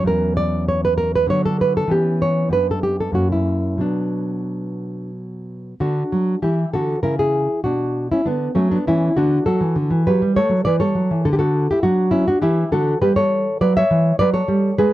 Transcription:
0.04 1.25 E2 medium
0.04 1.26 F#3 soft
0.04 1.26 C#4 soft
0.04 0.36 A#4 medium
0.37 0.67 D5 medium
0.68 0.84 C#5 medium
0.85 0.97 B4 medium
0.98 1.14 A#4 medium
1.15 1.30 B4 medium
1.27 1.88 D3 medium
1.27 1.87 F#3 soft
1.27 1.89 D4 soft
1.27 1.45 C#5 medium
1.46 1.61 A4 medium
1.61 1.76 B4 medium
1.77 1.92 A4 medium
1.88 2.50 E3 medium
1.88 2.49 B3 soft
1.88 2.51 C#4 soft
1.88 2.22 G4 medium
2.22 2.52 C#5 medium
2.49 3.11 F#2 medium
2.49 3.13 B3 soft
2.49 3.13 D4 soft
2.49 2.69 B4 medium
2.71 2.83 A4 medium
2.83 3.00 G4 medium
3.00 3.14 A4 medium
3.12 3.78 F#2 soft
3.12 3.79 A#3 soft
3.12 3.79 C#4 soft
3.12 3.32 F#4 medium
3.32 3.80 E4 medium
3.77 5.73 B2 soft
3.77 5.74 F#3 soft
3.77 5.74 B3 soft
3.77 5.10 D4 medium
5.80 6.03 D3 medium
5.80 6.39 D4 medium
5.80 6.40 F#4 medium
6.12 6.34 F#3 medium
6.42 6.64 E3 medium
6.42 6.72 E4 medium
6.42 6.72 G4 medium
6.73 6.96 D3 medium
6.73 7.02 F#4 medium
6.73 7.02 A4 medium
7.03 7.47 C#3 medium
7.03 7.18 E4 medium
7.03 7.18 A#4 medium
7.19 7.62 E4 medium
7.19 7.63 G#4 medium
7.64 8.08 B2 medium
7.64 8.07 D4 medium
7.64 8.08 F#4 medium
8.12 8.25 C#4 medium
8.12 8.26 E4 medium
8.26 8.48 D3 medium
8.26 8.54 B3 medium
8.26 8.54 D4 medium
8.55 8.77 F#3 medium
8.55 8.70 A3 medium
8.55 8.70 C#4 medium
8.71 8.86 B3 medium
8.71 8.86 D4 medium
8.87 9.09 E3 medium
8.87 9.15 C#4 medium
8.87 9.16 E4 medium
9.17 9.38 D3 medium
9.17 9.45 D4 medium
9.17 9.45 F#4 medium
9.46 9.61 F#3 medium
9.46 10.03 F#4 medium
9.46 10.04 A4 medium
9.61 9.75 E3 medium
9.76 9.90 D3 medium
9.91 10.05 E3 medium
10.07 10.21 F#3 medium
10.07 10.35 G4 medium
10.07 10.35 B4 medium
10.22 10.36 G3 medium
10.36 10.51 A3 medium
10.36 10.65 A4 medium
10.36 10.64 C#5 loud
10.49 10.64 F#3 medium
10.65 10.80 E3 medium
10.65 10.80 B4 medium
10.65 10.79 D5 medium
10.80 10.94 G3 medium
10.80 11.22 A4 medium
10.80 11.23 C#5 medium
10.95 11.09 F#3 medium
11.11 11.25 E3 medium
11.25 11.67 D3 medium
11.25 11.32 A4 medium
11.33 11.38 G4 medium
11.39 11.67 F#4 medium
11.39 11.68 A4 medium
11.71 11.84 E4 medium
11.71 11.83 G4 medium
11.83 12.26 F#3 medium
11.83 12.11 D4 medium
11.83 12.11 F#4 loud
12.11 12.26 C#4 medium
12.11 12.26 E4 medium
12.28 12.42 D4 medium
12.28 12.42 F#4 medium
12.42 12.63 E3 medium
12.42 12.70 E4 medium
12.42 12.70 G4 loud
12.72 12.93 D3 medium
12.72 13.00 F#4 medium
12.72 13.01 A4 loud
13.02 13.44 G3 medium
13.02 13.16 G4 medium
13.02 13.16 B4 loud
13.16 13.58 A4 medium
13.16 13.59 C#5 loud
13.61 13.82 F#3 medium
13.61 13.75 B4 medium
13.61 13.75 D5 loud
13.77 14.18 C#5 medium
13.77 14.18 E5 loud
13.91 14.11 E3 medium
14.19 14.41 F#3 medium
14.19 14.34 B4 medium
14.19 14.33 D5 loud
14.34 14.76 A4 medium
14.34 14.77 C#5 loud
14.48 14.70 G3 medium
14.78 14.93 G#3 medium
14.78 14.93 G#4 medium
14.78 14.93 B4 loud

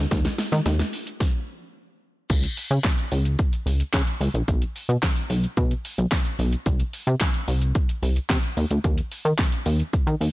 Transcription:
0.11 0.28 D#2 loud
0.11 kick loud
0.11 snare loud
0.11 closed hi-hat medium
0.11 shaker medium
0.25 snare loud
0.25 closed hi-hat medium
0.25 shaker medium
0.38 snare loud
0.38 open hi-hat medium
0.38 shaker medium
0.52 0.61 D#3 loud
0.52 snare loud
0.52 closed hi-hat medium
0.52 shaker medium
0.66 0.83 D#2 loud
0.66 snare loud
0.66 closed hi-hat medium
0.66 shaker medium
0.79 snare loud
0.79 closed hi-hat medium
0.79 shaker medium
0.93 open hi-hat medium
0.93 shaker medium
1.07 closed hi-hat medium
1.07 shaker medium
1.20 kick loud
1.20 snare medium
2.30 2.46 C#2 loud
2.30 kick loud
2.30 closed hi-hat medium
2.30 crash loud
2.30 shaker medium
2.43 closed hi-hat medium
2.43 shaker medium
2.57 open hi-hat medium
2.57 shaker medium
2.71 2.79 C#3 loud
2.71 closed hi-hat medium
2.71 shaker medium
2.84 kick loud
2.84 snare loud
2.84 clap loud
2.84 closed hi-hat medium
2.84 shaker medium
2.98 closed hi-hat medium
2.98 shaker medium
3.12 3.37 C#2 medium
3.12 open hi-hat medium
3.12 shaker medium
3.25 closed hi-hat medium
3.25 shaker medium
3.39 kick loud
3.39 closed hi-hat medium
3.39 shaker medium
3.53 closed hi-hat medium
3.53 shaker medium
3.66 3.83 C#2 medium
3.66 open hi-hat medium
3.66 shaker medium
3.80 closed hi-hat medium
3.80 shaker medium
3.94 4.02 C#3 loud
3.94 kick loud
3.94 snare medium
3.94 clap loud
3.94 closed hi-hat medium
3.94 shaker medium
4.07 closed hi-hat medium
4.07 shaker medium
4.21 4.29 C#2 loud
4.21 open hi-hat medium
4.21 shaker soft
4.34 4.43 A#1 medium
4.34 closed hi-hat medium
4.34 shaker medium
4.48 4.65 B1 loud
4.48 kick loud
4.48 closed hi-hat medium
4.48 shaker medium
4.62 closed hi-hat medium
4.62 shaker medium
4.76 open hi-hat medium
4.76 shaker medium
4.89 4.97 B2 loud
4.89 closed hi-hat medium
4.89 shaker medium
5.03 kick loud
5.03 snare loud
5.03 clap loud
5.03 closed hi-hat medium
5.03 shaker medium
5.16 closed hi-hat medium
5.16 shaker medium
5.30 5.46 B1 medium
5.30 open hi-hat medium
5.30 shaker medium
5.44 closed hi-hat soft
5.44 shaker medium
5.57 5.74 B2 loud
5.57 kick loud
5.57 closed hi-hat medium
5.57 shaker medium
5.71 closed hi-hat medium
5.71 shaker medium
5.85 open hi-hat medium
5.85 shaker medium
5.98 6.06 B1 loud
5.98 closed hi-hat medium
5.98 shaker medium
6.12 kick loud
6.12 snare loud
6.12 clap loud
6.12 closed hi-hat medium
6.12 shaker medium
6.25 closed hi-hat medium
6.25 shaker medium
6.39 6.56 B1 medium
6.39 open hi-hat medium
6.39 shaker medium
6.53 closed hi-hat medium
6.53 shaker medium
6.66 6.83 C2 loud
6.66 kick loud
6.66 closed hi-hat medium
6.66 shaker medium
6.80 closed hi-hat medium
6.80 shaker medium
6.93 open hi-hat medium
6.93 shaker medium
7.07 7.15 C3 loud
7.07 closed hi-hat medium
7.07 shaker medium
7.20 kick loud
7.20 snare loud
7.20 clap loud
7.20 closed hi-hat medium
7.20 shaker medium
7.34 closed hi-hat medium
7.34 shaker medium
7.48 7.73 C2 loud
7.48 open hi-hat medium
7.48 shaker medium
7.61 closed hi-hat medium
7.61 shaker medium
7.75 kick loud
7.75 closed hi-hat medium
7.75 shaker medium
7.89 closed hi-hat medium
7.89 shaker medium
8.03 8.19 C2 medium
8.03 open hi-hat medium
8.03 shaker medium
8.16 closed hi-hat medium
8.16 shaker medium
8.30 8.38 C3 loud
8.30 kick loud
8.30 snare loud
8.30 clap loud
8.30 closed hi-hat medium
8.30 shaker medium
8.43 closed hi-hat medium
8.43 shaker medium
8.57 8.65 D#2 loud
8.57 open hi-hat medium
8.57 shaker soft
8.71 8.79 D2 medium
8.71 closed hi-hat medium
8.71 shaker medium
8.84 9.01 D#2 loud
8.84 kick loud
8.84 closed hi-hat medium
8.84 shaker medium
8.98 closed hi-hat medium
8.98 shaker medium
9.12 open hi-hat medium
9.12 shaker medium
9.25 9.33 D#3 loud
9.25 closed hi-hat medium
9.25 shaker medium
9.38 kick loud
9.38 snare loud
9.38 clap loud
9.38 closed hi-hat medium
9.38 shaker medium
9.52 closed hi-hat medium
9.52 shaker medium
9.66 9.83 D#2 loud
9.66 open hi-hat medium
9.66 shaker medium
9.80 closed hi-hat medium
9.80 shaker medium
9.93 kick loud
9.93 closed hi-hat medium
9.93 shaker medium
10.07 10.15 D#3 loud
10.07 closed hi-hat medium
10.07 shaker medium
10.21 10.29 D#2 medium
10.21 open hi-hat medium
10.21 shaker medium

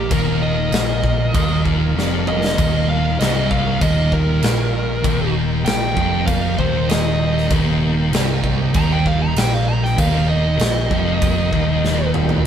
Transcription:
0.00 12.43 D#3 medium
0.00 12.43 A#3 medium
0.00 5.02 F4 medium
0.00 0.10 G4 medium
0.11 0.68 D#1 loud
0.11 0.71 D#2 loud
0.11 0.41 A#4 medium
0.11 kick loud
0.11 crash medium
0.42 1.61 D#5 loud
0.71 1.29 A#1 loud
0.71 1.33 A#2 loud
0.71 snare loud
0.71 crash medium
1.04 kick medium
1.34 1.92 D#1 loud
1.34 1.95 D#2 loud
1.34 kick loud
1.34 crash medium
1.65 kick medium
1.95 2.53 F1 loud
1.95 2.57 F2 loud
1.95 snare medium
2.27 2.87 D#5 loud
2.27 mid tom medium
2.45 snare loud
2.57 3.15 D#1 loud
2.57 3.18 D#2 loud
2.57 kick loud
2.57 crash medium
2.89 3.19 F5 medium
3.19 3.77 C1 loud
3.19 3.80 C2 loud
3.19 3.49 D#5 medium
3.19 snare loud
3.19 crash medium
3.51 3.80 F5 loud
3.51 kick medium
3.81 4.39 D#1 medium
3.81 4.42 D#2 loud
3.81 4.11 D#5 loud
3.81 kick loud
3.81 crash medium
4.12 5.32 A#4 loud
4.12 kick medium
4.43 5.01 A#1 medium
4.43 5.03 A#2 loud
4.43 snare loud
4.43 crash medium
5.04 5.62 D#1 loud
5.04 5.64 D#2 loud
5.04 12.42 G4 medium
5.04 kick loud
5.04 crash medium
5.65 5.94 A#1 medium
5.65 5.94 A#2 loud
5.65 6.25 G5 loud
5.65 snare loud
5.65 crash medium
5.94 6.54 F1 loud
5.94 6.56 F2 loud
5.94 kick medium
6.26 6.57 F5 medium
6.26 kick loud
6.26 crash medium
6.56 7.47 D#1 medium
6.56 7.48 D#2 loud
6.56 6.88 C5 medium
6.56 kick medium
6.89 7.49 D#5 loud
6.89 snare loud
6.89 crash medium
7.38 snare soft
7.49 8.09 D#1 loud
7.49 8.11 D#2 loud
7.49 kick loud
7.49 crash medium
8.11 8.70 C1 loud
8.11 8.73 C2 loud
8.11 snare loud
8.11 crash medium
8.44 kick medium
8.74 9.32 D#1 loud
8.74 9.35 D#2 loud
8.74 8.91 A#5 loud
8.74 kick loud
8.74 crash medium
8.93 9.06 G5 medium
9.06 9.21 F5 medium
9.06 kick medium
9.22 9.37 A#5 loud
9.35 9.94 A#1 loud
9.35 9.96 A#2 loud
9.35 9.54 G5 medium
9.35 snare loud
9.35 crash medium
9.54 9.68 F5 loud
9.68 9.83 A#5 loud
9.83 9.99 G5 medium
9.83 snare soft
9.97 10.56 D#1 loud
9.97 10.58 D#2 loud
9.97 10.29 F5 medium
9.97 kick loud
9.97 crash medium
10.29 12.10 D#5 loud
10.58 10.89 A#1 loud
10.58 10.89 A#2 loud
10.58 snare loud
10.58 crash medium
10.90 11.49 F1 loud
10.90 11.51 F2 loud
10.90 kick medium
11.22 kick loud
11.22 crash medium
11.52 12.41 D#1 loud
11.52 12.43 D#2 loud
11.52 kick medium
11.85 snare medium
12.14 mid tom medium
12.29 floor tom medium
12.43 12.46 C2 loud

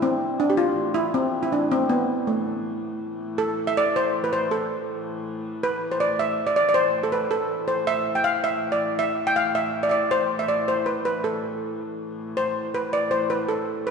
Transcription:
0.00 3.39 A2 medium
0.00 3.39 E3 medium
0.00 0.40 C4 medium
0.40 0.50 D4 medium
0.50 0.57 G4 medium
0.57 0.96 F4 medium
0.94 1.14 E4 medium
1.14 1.43 C4 medium
1.43 1.52 E4 medium
1.52 1.71 D4 medium
1.72 1.88 C4 medium
1.90 2.28 B3 medium
2.27 2.98 A3 medium
3.38 7.89 A2 medium
3.38 7.88 E3 medium
3.38 3.64 A4 medium
3.67 3.77 E5 medium
3.77 3.96 D5 medium
3.96 4.24 C5 medium
4.24 4.32 B4 medium
4.33 4.50 C5 medium
4.51 5.03 A4 medium
5.63 5.92 B4 medium
5.92 6.00 C5 medium
6.00 6.20 D5 medium
6.19 6.48 E5 medium
6.47 6.55 D5 medium
6.56 6.68 D5 medium
6.69 6.76 D5 medium
6.74 7.01 C5 medium
7.03 7.13 A4 medium
7.12 7.32 B4 medium
7.31 7.66 A4 medium
7.68 7.88 C5 medium
7.87 12.37 A2 medium
7.87 12.37 E3 medium
7.87 8.17 E5 loud
8.15 8.24 G5 medium
8.24 8.42 F5 medium
8.44 8.70 E5 medium
8.72 8.90 D5 medium
8.99 9.29 E5 loud
9.27 9.37 G5 medium
9.36 9.54 F5 medium
9.55 9.85 E5 medium
9.83 9.88 D5 medium
9.89 10.01 D5 medium
9.89 9.94 E5 medium
10.11 10.41 C5 medium
10.39 10.44 E5 medium
10.48 10.69 D5 medium
10.68 10.88 C5 medium
10.86 11.04 B4 medium
11.05 11.23 B4 medium
11.24 11.95 A4 medium
12.37 13.91 A2 medium
12.37 13.91 E3 medium
12.37 12.72 C5 medium
12.74 12.94 B4 medium
12.93 13.13 D5 medium
13.11 13.31 C5 medium
13.30 13.48 B4 medium
13.49 13.88 A4 medium
13.87 13.91 B4 medium

